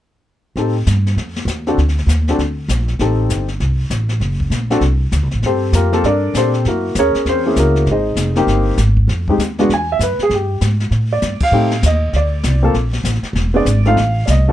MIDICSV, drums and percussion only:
0, 0, Header, 1, 2, 480
1, 0, Start_track
1, 0, Key_signature, -2, "minor"
1, 0, Tempo, 304569
1, 890, Time_signature, 4, 2, 24, 8
1, 22890, End_track
2, 0, Start_track
2, 0, Title_t, "Drums"
2, 892, Note_on_c, 9, 25, 42
2, 892, Note_on_c, 9, 38, 33
2, 1049, Note_off_c, 9, 38, 0
2, 1364, Note_on_c, 9, 44, 50
2, 1366, Note_on_c, 9, 38, 52
2, 1522, Note_off_c, 9, 44, 0
2, 1523, Note_off_c, 9, 38, 0
2, 1677, Note_on_c, 9, 38, 31
2, 1834, Note_off_c, 9, 38, 0
2, 1853, Note_off_c, 9, 25, 0
2, 1853, Note_on_c, 9, 25, 45
2, 1853, Note_on_c, 9, 38, 36
2, 2011, Note_off_c, 9, 38, 0
2, 2146, Note_on_c, 9, 38, 43
2, 2304, Note_off_c, 9, 38, 0
2, 2326, Note_on_c, 9, 44, 47
2, 2328, Note_on_c, 9, 38, 52
2, 2484, Note_off_c, 9, 44, 0
2, 2485, Note_off_c, 9, 38, 0
2, 2625, Note_on_c, 9, 38, 28
2, 2782, Note_off_c, 9, 38, 0
2, 2810, Note_off_c, 9, 25, 0
2, 2810, Note_on_c, 9, 25, 44
2, 2810, Note_on_c, 9, 38, 38
2, 2968, Note_off_c, 9, 38, 0
2, 2973, Note_on_c, 9, 38, 26
2, 3130, Note_off_c, 9, 38, 0
2, 3130, Note_on_c, 9, 38, 36
2, 3287, Note_off_c, 9, 38, 0
2, 3288, Note_on_c, 9, 44, 55
2, 3289, Note_on_c, 9, 38, 54
2, 3445, Note_off_c, 9, 44, 0
2, 3447, Note_off_c, 9, 38, 0
2, 3586, Note_on_c, 9, 38, 31
2, 3744, Note_off_c, 9, 38, 0
2, 3766, Note_off_c, 9, 25, 0
2, 3766, Note_on_c, 9, 25, 39
2, 3766, Note_on_c, 9, 38, 35
2, 3924, Note_off_c, 9, 38, 0
2, 4242, Note_on_c, 9, 44, 63
2, 4244, Note_on_c, 9, 38, 54
2, 4400, Note_off_c, 9, 44, 0
2, 4401, Note_off_c, 9, 38, 0
2, 4539, Note_on_c, 9, 38, 29
2, 4696, Note_off_c, 9, 38, 0
2, 4714, Note_off_c, 9, 25, 0
2, 4714, Note_on_c, 9, 25, 43
2, 4714, Note_on_c, 9, 38, 36
2, 4872, Note_off_c, 9, 38, 0
2, 5198, Note_on_c, 9, 44, 60
2, 5199, Note_on_c, 9, 38, 53
2, 5355, Note_off_c, 9, 44, 0
2, 5357, Note_off_c, 9, 38, 0
2, 5489, Note_on_c, 9, 38, 32
2, 5646, Note_off_c, 9, 38, 0
2, 5677, Note_off_c, 9, 25, 0
2, 5677, Note_on_c, 9, 25, 43
2, 5677, Note_on_c, 9, 38, 37
2, 5835, Note_off_c, 9, 38, 0
2, 6151, Note_on_c, 9, 44, 49
2, 6153, Note_on_c, 9, 38, 49
2, 6309, Note_off_c, 9, 44, 0
2, 6310, Note_off_c, 9, 38, 0
2, 6443, Note_on_c, 9, 38, 32
2, 6601, Note_off_c, 9, 38, 0
2, 6634, Note_off_c, 9, 25, 0
2, 6634, Note_on_c, 9, 25, 39
2, 6634, Note_on_c, 9, 38, 36
2, 6792, Note_off_c, 9, 38, 0
2, 6935, Note_on_c, 9, 36, 45
2, 7092, Note_off_c, 9, 36, 0
2, 7112, Note_on_c, 9, 44, 46
2, 7113, Note_on_c, 9, 38, 52
2, 7269, Note_off_c, 9, 44, 0
2, 7271, Note_off_c, 9, 38, 0
2, 7413, Note_on_c, 9, 38, 31
2, 7571, Note_off_c, 9, 38, 0
2, 7581, Note_off_c, 9, 25, 0
2, 7581, Note_on_c, 9, 25, 45
2, 7581, Note_on_c, 9, 38, 38
2, 7738, Note_off_c, 9, 38, 0
2, 8070, Note_on_c, 9, 44, 53
2, 8071, Note_on_c, 9, 38, 53
2, 8227, Note_off_c, 9, 44, 0
2, 8229, Note_off_c, 9, 38, 0
2, 8369, Note_on_c, 9, 38, 31
2, 8526, Note_off_c, 9, 38, 0
2, 8548, Note_off_c, 9, 25, 0
2, 8548, Note_on_c, 9, 25, 44
2, 8548, Note_on_c, 9, 38, 36
2, 8705, Note_off_c, 9, 38, 0
2, 9029, Note_on_c, 9, 44, 55
2, 9031, Note_on_c, 9, 38, 57
2, 9187, Note_off_c, 9, 44, 0
2, 9188, Note_off_c, 9, 38, 0
2, 9343, Note_on_c, 9, 38, 36
2, 9501, Note_off_c, 9, 38, 0
2, 9518, Note_off_c, 9, 25, 0
2, 9518, Note_on_c, 9, 25, 45
2, 9518, Note_on_c, 9, 38, 39
2, 9676, Note_off_c, 9, 38, 0
2, 9998, Note_on_c, 9, 44, 51
2, 9999, Note_on_c, 9, 38, 55
2, 10155, Note_off_c, 9, 44, 0
2, 10157, Note_off_c, 9, 38, 0
2, 10301, Note_on_c, 9, 38, 32
2, 10459, Note_off_c, 9, 38, 0
2, 10476, Note_off_c, 9, 25, 0
2, 10476, Note_on_c, 9, 25, 46
2, 10476, Note_on_c, 9, 38, 36
2, 10634, Note_off_c, 9, 38, 0
2, 10952, Note_on_c, 9, 44, 57
2, 10954, Note_on_c, 9, 38, 57
2, 11110, Note_off_c, 9, 44, 0
2, 11112, Note_off_c, 9, 38, 0
2, 11262, Note_on_c, 9, 38, 35
2, 11420, Note_off_c, 9, 38, 0
2, 11439, Note_off_c, 9, 25, 0
2, 11439, Note_on_c, 9, 25, 41
2, 11439, Note_on_c, 9, 38, 41
2, 11597, Note_off_c, 9, 38, 0
2, 11915, Note_on_c, 9, 44, 51
2, 11916, Note_on_c, 9, 38, 53
2, 12072, Note_off_c, 9, 44, 0
2, 12074, Note_off_c, 9, 38, 0
2, 12224, Note_on_c, 9, 38, 32
2, 12382, Note_off_c, 9, 38, 0
2, 12394, Note_off_c, 9, 25, 0
2, 12394, Note_on_c, 9, 25, 40
2, 12394, Note_on_c, 9, 38, 38
2, 12552, Note_off_c, 9, 38, 0
2, 12867, Note_on_c, 9, 44, 58
2, 12868, Note_on_c, 9, 38, 58
2, 13024, Note_off_c, 9, 44, 0
2, 13026, Note_off_c, 9, 38, 0
2, 13167, Note_on_c, 9, 38, 33
2, 13324, Note_off_c, 9, 38, 0
2, 13362, Note_off_c, 9, 25, 0
2, 13362, Note_on_c, 9, 25, 44
2, 13362, Note_on_c, 9, 38, 42
2, 13519, Note_off_c, 9, 38, 0
2, 13830, Note_on_c, 9, 44, 50
2, 13832, Note_on_c, 9, 38, 55
2, 13988, Note_off_c, 9, 44, 0
2, 13989, Note_off_c, 9, 38, 0
2, 14135, Note_on_c, 9, 36, 42
2, 14292, Note_off_c, 9, 36, 0
2, 14325, Note_off_c, 9, 25, 0
2, 14325, Note_on_c, 9, 25, 43
2, 14325, Note_on_c, 9, 38, 41
2, 14482, Note_off_c, 9, 38, 0
2, 14622, Note_on_c, 9, 36, 50
2, 14779, Note_off_c, 9, 36, 0
2, 14805, Note_on_c, 9, 44, 54
2, 14807, Note_on_c, 9, 38, 57
2, 14963, Note_off_c, 9, 44, 0
2, 14964, Note_off_c, 9, 38, 0
2, 15105, Note_on_c, 9, 38, 35
2, 15263, Note_off_c, 9, 38, 0
2, 15284, Note_off_c, 9, 25, 0
2, 15284, Note_on_c, 9, 25, 43
2, 15284, Note_on_c, 9, 38, 42
2, 15442, Note_off_c, 9, 38, 0
2, 15765, Note_on_c, 9, 44, 57
2, 15767, Note_on_c, 9, 38, 57
2, 15923, Note_off_c, 9, 44, 0
2, 15924, Note_off_c, 9, 38, 0
2, 16058, Note_on_c, 9, 38, 33
2, 16215, Note_off_c, 9, 38, 0
2, 16238, Note_off_c, 9, 25, 0
2, 16238, Note_on_c, 9, 25, 40
2, 16238, Note_on_c, 9, 38, 39
2, 16395, Note_off_c, 9, 38, 0
2, 16721, Note_on_c, 9, 44, 53
2, 16723, Note_on_c, 9, 38, 56
2, 16879, Note_off_c, 9, 44, 0
2, 16880, Note_off_c, 9, 38, 0
2, 17024, Note_on_c, 9, 38, 37
2, 17181, Note_off_c, 9, 38, 0
2, 17203, Note_off_c, 9, 25, 0
2, 17203, Note_on_c, 9, 25, 50
2, 17203, Note_on_c, 9, 38, 39
2, 17361, Note_off_c, 9, 38, 0
2, 17680, Note_on_c, 9, 44, 52
2, 17682, Note_on_c, 9, 38, 58
2, 17838, Note_off_c, 9, 44, 0
2, 17840, Note_off_c, 9, 38, 0
2, 17970, Note_on_c, 9, 51, 60
2, 17978, Note_on_c, 9, 36, 67
2, 18127, Note_off_c, 9, 51, 0
2, 18136, Note_off_c, 9, 36, 0
2, 18159, Note_off_c, 9, 25, 0
2, 18159, Note_on_c, 9, 25, 42
2, 18460, Note_on_c, 9, 38, 48
2, 18617, Note_off_c, 9, 38, 0
2, 18641, Note_on_c, 9, 44, 62
2, 18642, Note_on_c, 9, 38, 60
2, 18798, Note_off_c, 9, 44, 0
2, 18800, Note_off_c, 9, 38, 0
2, 19121, Note_off_c, 9, 25, 0
2, 19121, Note_on_c, 9, 25, 49
2, 19121, Note_on_c, 9, 38, 41
2, 19278, Note_off_c, 9, 38, 0
2, 19596, Note_on_c, 9, 44, 46
2, 19598, Note_on_c, 9, 38, 58
2, 19754, Note_off_c, 9, 44, 0
2, 19755, Note_off_c, 9, 38, 0
2, 20083, Note_off_c, 9, 25, 0
2, 20083, Note_on_c, 9, 25, 49
2, 20083, Note_on_c, 9, 38, 43
2, 20241, Note_off_c, 9, 38, 0
2, 20379, Note_on_c, 9, 38, 39
2, 20536, Note_off_c, 9, 38, 0
2, 20560, Note_on_c, 9, 44, 56
2, 20561, Note_on_c, 9, 38, 62
2, 20717, Note_off_c, 9, 44, 0
2, 20719, Note_off_c, 9, 38, 0
2, 20722, Note_on_c, 9, 38, 27
2, 20854, Note_off_c, 9, 38, 0
2, 20854, Note_on_c, 9, 38, 36
2, 20877, Note_off_c, 9, 38, 0
2, 20877, Note_on_c, 9, 38, 42
2, 21035, Note_off_c, 9, 38, 0
2, 21045, Note_off_c, 9, 25, 0
2, 21045, Note_on_c, 9, 25, 48
2, 21045, Note_on_c, 9, 38, 43
2, 21203, Note_off_c, 9, 38, 0
2, 21525, Note_on_c, 9, 44, 58
2, 21527, Note_on_c, 9, 38, 58
2, 21683, Note_off_c, 9, 44, 0
2, 21684, Note_off_c, 9, 38, 0
2, 21830, Note_on_c, 9, 38, 31
2, 21988, Note_off_c, 9, 38, 0
2, 22013, Note_off_c, 9, 25, 0
2, 22013, Note_on_c, 9, 25, 53
2, 22013, Note_on_c, 9, 38, 39
2, 22171, Note_off_c, 9, 38, 0
2, 22492, Note_on_c, 9, 44, 55
2, 22493, Note_on_c, 9, 38, 60
2, 22649, Note_off_c, 9, 44, 0
2, 22651, Note_off_c, 9, 38, 0
2, 22890, Note_off_c, 9, 25, 0
2, 22890, End_track
0, 0, End_of_file